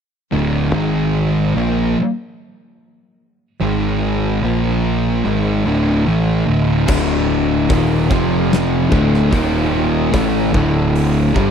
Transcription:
0.32 D1 D2 A2 D3
0.73 G#1 G#2 D#3 G#3
1.55 A#1 A#2 F3 A#3
3.60 G#1 G#2 D#3 G#3
4.43 A#1 A#2 F3 A#3
5.25 G#1 G#2 D#3 G#3
5.65 D1 D2 A2 D3
6.07 A1 A2 E3 A3
6.47 D1 D2 A2 D3
6.88 D1 D2 A2 D3, kick, crash
7.69 D#1 D#2 A#2 D#3, kick, open hi-hat
8.09 F1 F2 C3 F3, kick, crash
8.53 snare
8.90 D1 D2 A2 D3, kick
9.14 snare
9.31 D#1 D#2 A#2 D#3, kick, open hi-hat
10.11 A1 A2 E3 A3, kick, open hi-hat
10.52 D1 D2 A2 D3, kick
10.96 open hi-hat
11.34 G1 G2 D3 G3, kick

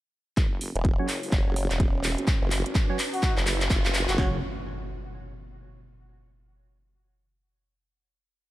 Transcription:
0.37 F#1 C#4 F#4 C#5, kick, clap, closed hi-hat, riser
0.61 open hi-hat
0.76 E1, closed hi-hat
0.85 kick, closed hi-hat
0.99 F#1 F#3 C#4 F#4 C#5
1.09 clap, open hi-hat
1.23 open hi-hat
1.32 F#1, kick, clap, closed hi-hat
1.47 F#1
1.56 open hi-hat
1.71 E1, clap, closed hi-hat
1.80 kick, closed hi-hat
2.04 clap, open hi-hat
2.18 F#1, closed hi-hat
2.28 B4, kick, clap, closed hi-hat
2.42 F#1
2.51 clap, open hi-hat
2.66 G#1, closed hi-hat
2.75 kick, clap, closed hi-hat
2.90 F#3 C#4 F#4 C#5
2.99 clap, open hi-hat
3.14 F#4, open hi-hat
3.23 kick, clap, closed hi-hat
3.38 F#1, clap
3.47 clap, open hi-hat
3.61 clap, closed hi-hat
3.70 F#1, kick, clap, closed hi-hat
3.85 clap
3.94 clap, open hi-hat
4.09 F#1 F#4, clap, closed hi-hat
4.18 F#1 F#3 C#4 F#4 C#5, kick, snare, clap, impact

